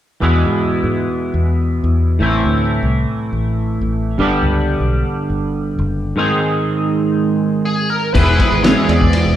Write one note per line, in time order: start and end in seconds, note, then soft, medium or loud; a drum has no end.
0.20 2.18 E2 medium
0.20 0.45 E2 medium
0.20 2.18 B2 medium
0.20 2.18 E3 medium
0.20 2.19 G#3 medium
0.20 2.19 B3 medium
0.20 2.19 E4 medium
0.46 0.80 G#2 medium
0.84 1.06 G#2 medium
1.34 1.79 E2 medium
1.84 2.17 E2 medium
2.19 2.43 A1 medium
2.19 4.16 A2 medium
2.19 4.17 E3 medium
2.19 4.17 A3 medium
2.19 4.18 C4 medium
2.19 4.18 E4 medium
2.45 2.79 D2 medium
2.83 3.05 C2 medium
3.33 3.78 A1 medium
3.81 4.15 A1 medium
4.18 4.41 G1 medium
4.18 6.15 G2 medium
4.18 6.16 D3 medium
4.18 6.16 G3 medium
4.18 6.16 B3 medium
4.18 6.17 D4 medium
4.18 6.17 G4 medium
4.43 4.77 C#2 medium
4.80 5.03 B1 medium
5.30 5.75 G1 medium
5.79 6.13 F#1 medium
6.16 8.13 G#2 medium
6.16 8.14 D#3 medium
6.16 8.14 G#3 medium
6.16 8.14 C4 medium
6.16 8.14 D#4 medium
6.16 8.15 G#4 medium
7.65 7.88 G#4 medium
7.90 8.13 A#4 medium
8.14 8.37 E1 loud
8.14 8.62 E2 medium
8.14 8.63 E3 medium
8.14 8.41 G#3 medium
8.14 8.40 B3 medium
8.14 8.40 E4 loud
8.14 8.38 G#4 medium
8.14 8.64 B4 medium
8.14 kick loud
8.14 crash medium
8.39 8.64 G#3 soft
8.39 8.64 B3 medium
8.39 8.65 E4 medium
8.39 8.65 G#4 medium
8.39 kick medium
8.39 ride medium
8.52 8.74 G#1 medium
8.63 9.13 E2 medium
8.63 9.36 E3 medium
8.63 8.91 G#3 medium
8.63 8.90 B3 medium
8.63 8.90 E4 medium
8.63 8.88 G#4 medium
8.63 8.90 C#5 medium
8.63 snare loud
8.63 ride medium
8.89 9.23 E2 medium
8.89 9.36 G#3 medium
8.89 9.36 B3 medium
8.89 9.36 E4 medium
8.89 9.36 G#4 medium
8.89 9.36 D5 medium
8.89 ride medium
9.01 kick medium
9.13 ride medium
9.26 9.36 E1 medium